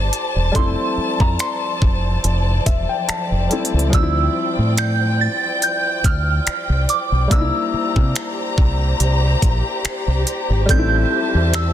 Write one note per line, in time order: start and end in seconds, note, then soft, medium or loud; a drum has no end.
0.00 0.49 G3 medium
0.00 0.50 A3 medium
0.00 0.52 C4 medium
0.00 0.53 E4 medium
0.00 0.51 G4 medium
0.00 7.27 C5 medium
0.00 10.65 D5 medium
0.00 3.89 A5 medium
0.00 0.51 D6 loud
0.13 closed hi-hat medium
0.36 0.52 E1 medium
0.52 0.74 F1 medium
0.52 7.27 F3 medium
0.52 3.45 G3 medium
0.52 3.46 A3 medium
0.52 kick loud
0.52 closed hi-hat medium
0.56 3.47 C4 medium
0.56 3.48 E4 medium
0.56 1.22 C6 medium
0.97 muted fingered electric bass stroke soft
1.20 1.36 F2 medium
1.20 1.29 A#5 medium
1.20 kick medium
1.39 2.63 C6 medium
1.39 finger snap loud
1.39 closed hi-hat medium
1.82 2.16 F1 loud
1.82 kick medium
2.24 2.58 F1 medium
2.24 closed hi-hat medium
2.66 2.85 E1 medium
2.66 2.88 E5 medium
2.66 kick medium
2.66 closed hi-hat medium
2.89 3.07 G5 medium
3.09 3.89 A5 medium
3.09 finger snap loud
3.09 muted fingered electric bass stroke soft
3.09 closed hi-hat medium
3.32 3.47 F1 medium
3.49 3.90 G3 medium
3.49 3.93 A3 soft
3.49 3.93 C4 medium
3.49 3.94 E4 medium
3.49 closed hi-hat medium
3.65 closed hi-hat medium
3.74 3.90 C#2 medium
3.79 closed hi-hat soft
3.90 4.27 D2 loud
3.90 7.25 F3 medium
3.90 7.26 G3 medium
3.90 7.28 G5 medium
3.90 kick loud
3.90 closed hi-hat medium
3.94 7.28 C4 medium
3.94 4.02 D#4 medium
3.94 4.81 E6 medium
4.03 7.32 E4 medium
4.58 5.27 A2 medium
4.78 5.22 G6 loud
4.78 finger snap loud
4.78 closed hi-hat medium
5.21 5.64 A6 medium
5.62 6.06 G6 medium
5.62 closed hi-hat medium
6.04 6.39 D2 medium
6.04 6.92 F6 medium
6.04 kick medium
6.04 closed hi-hat medium
6.47 finger snap loud
6.47 muted fingered electric bass stroke soft
6.47 closed hi-hat medium
6.69 6.85 C2 medium
6.89 7.33 D6 medium
6.89 closed hi-hat medium
7.12 7.28 B1 medium
7.28 7.50 C2 loud
7.28 10.63 G3 medium
7.28 10.65 A#3 medium
7.28 11.73 G4 medium
7.28 10.66 C5 medium
7.28 10.66 A#5 medium
7.28 kick loud
7.28 closed hi-hat medium
7.32 10.66 D4 medium
7.32 7.40 D#4 medium
7.32 8.97 E6 medium
7.41 10.70 E4 medium
7.74 muted fingered electric bass stroke soft
7.96 8.12 C3 loud
7.96 kick medium
8.15 finger snap loud
8.15 closed hi-hat medium
8.58 8.92 C2 medium
8.58 kick medium
9.00 9.34 C2 loud
9.00 closed hi-hat medium
9.42 9.61 A#1 medium
9.42 kick medium
9.42 closed hi-hat medium
9.85 finger snap loud
9.85 muted fingered electric bass stroke soft
9.85 closed hi-hat medium
10.08 10.23 C2 medium
10.27 closed hi-hat medium
10.50 10.66 G#1 medium
10.66 11.03 A1 loud
10.66 11.73 G3 medium
10.66 11.73 A3 medium
10.66 11.73 C5 medium
10.66 11.73 E5 medium
10.66 11.73 A5 medium
10.66 kick medium
10.66 closed hi-hat medium
10.70 11.73 C4 medium
10.70 10.78 D#4 medium
10.70 11.57 G6 loud
10.79 11.73 E4 medium
11.34 11.73 E2 medium
11.53 11.73 E6 medium
11.53 finger snap loud
11.53 closed hi-hat medium